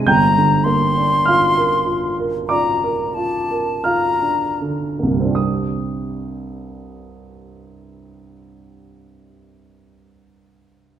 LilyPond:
<<
  \new Staff \with { instrumentName = "Flute" } { \time 4/4 \key c \minor \tempo 4 = 43 bes''8 c'''4. bes''8 a''8 bes''8 r8 | r1 | }
  \new Staff \with { instrumentName = "Grand piano" } { \time 4/4 \key c \minor << { <g'' g'''>4 <f'' f'''>4 <d'' d'''>4 <f'' f'''>4 | <c, g, g c' d' g' ees'''>1 | } \\ { <g,, g,>16 d16 bes16 d'16 f'16 bes'16 f'16 bes'16 f'16 bes'16 f'16 bes'16 f'16 d'16 d16 bes16 | r1 | } >> }
>>